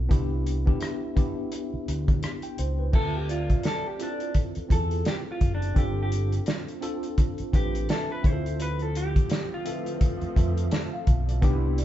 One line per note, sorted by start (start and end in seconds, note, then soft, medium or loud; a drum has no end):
0.00 0.13 C4 medium
0.00 0.10 E4 medium
0.00 0.13 F4 medium
0.00 0.13 A4 medium
0.09 0.71 C2 loud
0.09 0.53 B3 loud
0.09 0.53 D4 medium
0.09 0.54 E4 medium
0.09 0.54 G4 loud
0.09 kick loud
0.09 closed hi-hat medium
0.47 closed hi-hat medium
0.66 1.07 B3 medium
0.66 1.08 D4 medium
0.66 1.08 E4 medium
0.66 1.08 G4 medium
0.66 kick medium
0.81 1.88 E5 medium
0.81 cross-stick loud
0.81 closed hi-hat medium
1.15 1.75 B3 medium
1.15 1.75 D4 medium
1.15 1.76 E4 medium
1.15 1.76 G4 medium
1.15 kick medium
1.15 closed hi-hat medium
1.52 closed hi-hat medium
1.74 muted fingered electric bass stroke soft
1.88 2.18 D2 medium
1.88 closed hi-hat medium
2.08 kick medium
2.08 closed hi-hat soft
2.23 cross-stick loud
2.23 closed hi-hat medium
2.42 2.57 G5 medium
2.42 closed hi-hat soft
2.58 2.89 C#2 medium
2.58 2.78 C5 medium
2.58 closed hi-hat medium
2.79 3.12 B4 medium
2.93 3.54 D2 loud
2.93 3.80 C4 medium
2.93 3.81 F4 medium
2.93 3.16 A4 medium
2.93 3.81 A4 medium
2.93 3.80 E5 medium
2.93 kick loud
2.93 crash medium
3.16 3.30 G4 medium
3.28 3.66 F4 medium
3.28 4.35 D5 medium
3.28 closed hi-hat medium
3.50 kick medium
3.50 closed hi-hat soft
3.63 3.87 A4 medium
3.63 snare medium
3.63 closed hi-hat medium
3.87 4.01 G4 medium
3.99 4.58 C4 medium
3.99 4.34 D4 medium
3.99 4.58 E4 medium
3.99 4.59 F4 medium
3.99 4.59 A4 medium
3.99 closed hi-hat medium
4.20 closed hi-hat soft
4.34 kick medium
4.34 closed hi-hat medium
4.55 muted fingered electric bass stroke soft
4.55 closed hi-hat soft
4.68 5.01 E2 medium
4.68 5.56 C4 medium
4.68 5.56 E4 medium
4.68 5.57 F4 soft
4.68 4.78 G#4 medium
4.68 5.08 A4 medium
4.68 kick medium
4.68 closed hi-hat medium
4.77 5.61 A4 medium
4.91 closed hi-hat soft
5.05 5.14 G4 medium
5.05 snare loud
5.05 closed hi-hat medium
5.32 5.53 F4 medium
5.41 5.72 F#1 medium
5.41 kick medium
5.41 closed hi-hat medium
5.55 5.78 D4 medium
5.62 closed hi-hat soft
5.74 6.37 G1 medium
5.74 6.62 C4 medium
5.74 6.63 D4 medium
5.74 6.63 F4 medium
5.74 6.01 G4 medium
5.74 6.63 A4 medium
5.74 kick loud
5.74 closed hi-hat medium
6.03 6.34 G4 medium
6.12 closed hi-hat medium
6.32 closed hi-hat soft
6.46 snare loud
6.46 closed hi-hat medium
6.68 closed hi-hat soft
6.81 7.40 C4 medium
6.81 7.41 D4 medium
6.81 7.41 F4 medium
6.81 7.41 A4 medium
6.81 closed hi-hat medium
7.03 closed hi-hat soft
7.18 kick medium
7.18 closed hi-hat medium
7.38 muted fingered electric bass stroke soft
7.38 closed hi-hat soft
7.52 7.84 A1 medium
7.52 8.22 C4 medium
7.52 8.24 D4 medium
7.52 8.24 F4 medium
7.52 7.88 G4 medium
7.52 8.25 B4 medium
7.52 kick medium
7.52 closed hi-hat medium
7.75 closed hi-hat soft
7.89 8.09 A4 medium
7.89 8.56 E5 medium
7.89 snare loud
7.89 closed hi-hat medium
8.12 8.26 B4 medium
8.23 9.15 D2 medium
8.23 9.38 C4 medium
8.23 9.38 E4 medium
8.23 9.39 F4 medium
8.23 8.32 G#4 medium
8.23 8.62 C5 loud
8.23 kick loud
8.23 closed hi-hat medium
8.32 9.43 A4 medium
8.46 closed hi-hat soft
8.59 11.40 D3 medium
8.59 11.40 F3 medium
8.59 11.40 A3 medium
8.59 11.40 C4 medium
8.59 8.82 B4 medium
8.59 closed hi-hat medium
8.79 8.96 A4 medium
8.79 closed hi-hat soft
8.95 9.48 G4 medium
8.95 closed hi-hat medium
9.16 kick medium
9.16 closed hi-hat medium
9.30 snare loud
9.30 closed hi-hat medium
9.54 10.55 F4 medium
9.65 10.24 C4 medium
9.65 10.25 F4 medium
9.65 10.25 A4 medium
9.65 10.72 B4 soft
9.65 10.24 E5 medium
9.65 closed hi-hat medium
9.86 closed hi-hat soft
10.01 kick medium
10.01 closed hi-hat medium
10.21 muted fingered electric bass stroke soft
10.21 closed hi-hat soft
10.36 10.67 F2 medium
10.36 11.23 C4 medium
10.36 11.24 F4 medium
10.36 11.24 A4 medium
10.36 11.23 E5 medium
10.36 kick medium
10.36 closed hi-hat medium
10.57 closed hi-hat soft
10.71 10.91 A5 medium
10.71 snare loud
10.71 closed hi-hat medium
10.93 11.27 F5 medium
11.07 11.43 B1 medium
11.07 kick medium
11.07 closed hi-hat medium
11.29 11.62 D5 medium
11.29 closed hi-hat soft
11.42 11.85 C2 loud
11.42 11.85 B2 medium
11.42 11.85 G3 medium
11.42 11.85 B3 loud
11.42 11.85 D4 loud
11.42 11.51 D#4 medium
11.42 11.85 E4 medium
11.42 11.85 G4 loud
11.42 kick loud
11.42 closed hi-hat medium
11.50 11.85 E4 loud
11.78 11.85 D5 medium
11.78 closed hi-hat medium